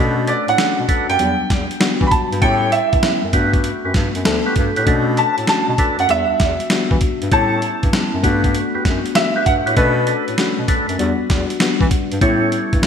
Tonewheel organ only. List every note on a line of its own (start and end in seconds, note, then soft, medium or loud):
0.00 0.15 D4 loud
0.00 0.16 A4 medium
0.00 0.16 B4 loud
0.28 0.46 D4 medium
0.28 0.46 A4 medium
0.28 0.46 B4 medium
0.88 1.07 D4 medium
0.88 1.07 A4 medium
0.88 1.07 B4 medium
2.42 2.71 G4 medium
2.42 2.71 A4 medium
2.42 2.71 C#5 loud
3.33 3.52 F#4 medium
3.33 3.52 G4 medium
3.33 3.52 B4 medium
3.85 3.94 F#4 medium
3.85 3.94 G4 medium
3.85 3.94 B4 medium
4.46 4.55 F#4 medium
4.46 4.55 G4 medium
4.46 4.55 B4 medium
4.77 4.86 F#4 medium
4.77 4.86 G4 medium
4.77 4.86 B4 medium
4.87 5.05 D4 medium
4.87 5.06 A4 medium
4.87 5.06 B4 loud
5.18 5.36 D4 medium
5.18 5.36 A4 medium
5.18 5.36 B4 medium
5.79 5.97 D4 medium
5.79 5.97 A4 medium
5.79 5.97 B4 medium
7.32 7.61 G4 medium
7.32 7.61 A4 medium
7.32 7.61 C#5 loud
8.23 8.42 F#4 medium
8.23 8.42 G4 medium
8.23 8.42 B4 medium
8.75 8.84 F#4 medium
8.75 8.84 G4 medium
8.75 8.84 B4 medium
9.36 9.45 F#4 medium
9.36 9.45 G4 medium
9.36 9.45 B4 medium
9.66 9.75 F#4 medium
9.66 9.76 G4 medium
9.66 9.76 B4 medium
9.76 9.95 D4 medium
9.76 9.95 A4 medium
9.76 9.95 B4 loud
10.07 10.26 D4 medium
10.07 10.26 A4 medium
10.07 10.26 B4 medium
10.68 10.87 D4 medium
10.68 10.87 A4 medium
10.68 10.87 B4 medium
12.22 12.50 G4 medium
12.22 12.51 A4 medium
12.22 12.51 C#5 loud